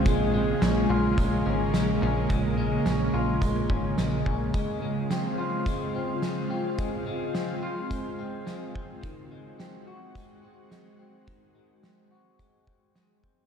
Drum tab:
HH |x-x-x-x-|x-x-x-x-|x-x-x-x-|x-x-x-x-|
SD |--o---o-|--o---o-|--o---o-|--o---o-|
BD |o---o---|o---oo-o|o---o---|o---o--o|

HH |x-x-x-x-|x-x-x-x-|
SD |--o---o-|--o---o-|
BD |o---o---|o---oo-o|